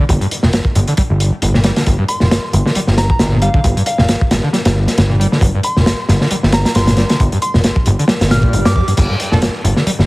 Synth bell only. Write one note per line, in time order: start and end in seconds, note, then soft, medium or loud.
2.09 2.27 C6 medium
2.98 3.06 A#5 medium
3.10 3.17 A#5 medium
3.42 3.61 F5 medium
3.87 3.95 F5 medium
3.99 4.05 F5 medium
5.64 5.83 C6 medium
6.53 6.61 A#5 medium
6.66 6.72 A#5 medium
6.75 7.20 C6 medium
7.42 7.61 C6 medium
8.31 8.50 F6 medium
8.66 8.72 D6 medium
8.76 8.83 D6 medium